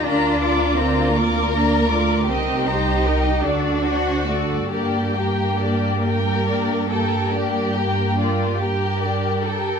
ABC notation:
X:1
M:12/8
L:1/16
Q:3/8=48
K:Gm
V:1 name="Violin section"
[db]2 [Bd']2 [db]2 [Bd']2 [db]2 [Bd']2 [eg]2 [cb]2 [eg]2 d2 [c^f]2 d2 | [Gd]2 [Bg]2 [Gd]2 [Bg]2 [Gd]2 [Bg]2 [Gd]2 [Bg]2 [Gd]2 [Bg]2 [Gd]2 [Bg]2 |]
V:2 name="Viola section"
[DB]2 [Fd]2 [DB]2 [Fd]2 [DB]2 [Fd]2 [EB]2 [Gc]2 [EB]2 [DA]2 ^F2 [DA]2 | [DB]2 G2 [DB]2 G2 [DB]2 G2 [DB]2 G2 [DB]2 G2 [DB]2 G2 |]
V:3 name="Violin section"
F6 B6 G6 ^F6 | G6 B4 A2 G4 F2 G4 A2 |]
V:4 name="Cello section"
D4 C2 B,4 A,2 C2 E4 D4 A,2 | B,16- B,2 z6 |]
V:5 name="Double bass section" clef=bass
D,,12 C,,6 D,,6 | G,,16- G,,6- G,, z |]